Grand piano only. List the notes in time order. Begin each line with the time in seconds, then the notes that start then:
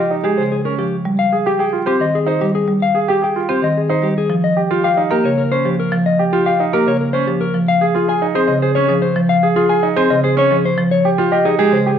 Already playing: G4
0.11 D#4
0.25 G#4
0.65 C#4
1.33 G#4
1.46 G4
1.59 G#4
1.73 F4
1.86 C5
2.26 D#4
2.95 G#4
3.08 G4
3.22 G#4
3.36 F4
3.49 C5
3.89 D#4
4.57 G4
4.71 F4
4.84 G4
4.97 D#4
5.11 A#4
5.52 C#4
6.19 G4
6.33 F4
6.46 G4
6.60 D#4
6.73 A#4
7.14 C#4
7.81 G#4
7.95 F4
8.08 G#4
8.22 D#4
8.35 C5
8.62 G#4
8.76 C#4
9.43 G#4
9.56 F4
9.70 G#4
9.83 D#4
9.97 C5
10.24 G#4
10.37 C#4
11.05 G4
11.18 F4
11.32 G4
11.46 D#4
11.59 G#4
11.86 G4